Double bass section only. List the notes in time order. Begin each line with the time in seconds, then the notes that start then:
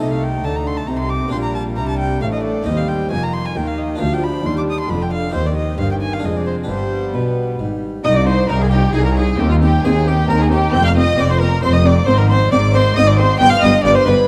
0.00 C2
0.44 D2
0.89 C2
1.34 A#1
1.78 C2
2.22 A1
2.67 D#2
3.12 F1
3.56 D#2
4.01 D2
4.45 D#2
4.90 F1
5.35 D#2
5.79 G1
6.24 F1
6.69 G1
7.14 B1
7.60 G#1
8.05 C2
8.49 C2
8.94 C2
9.40 D#2
9.85 D#2
10.29 D#2
10.74 F1
11.18 F1
11.63 F1
12.08 G#1
12.53 G#1
12.96 G#1
13.41 G1
13.63 G1
13.86 G1
14.08 G1